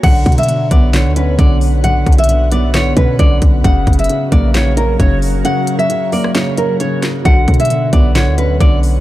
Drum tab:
CC |x-------------------------------|--------------------------------|--------------------------------|--------------------------------|
HH |x---xxxxx---x---x---x---x---o---|x---xxxxx---x---x---x---x---x---|x---xxxxx---x---x---x---x---o---|x---x-x-x---o---x---x---x---x---|
CP |----------------x---------------|----------------x---------------|----------------x---------------|----------------x-----------x---|
SD |----------------o---------------|----------------o---------------|----------------o---------------|--------------r-o-----------o---|
BD |o---o-------o-----------o-------|----o---------------o---o---o---|o---o-------o-----------o-------|--------------------------------|

CC |--------------------------------|
HH |x---xxxxx---x---x---x---x---o---|
CP |----------------x---------------|
SD |----------------o---------------|
BD |o---o-------o-----------o-------|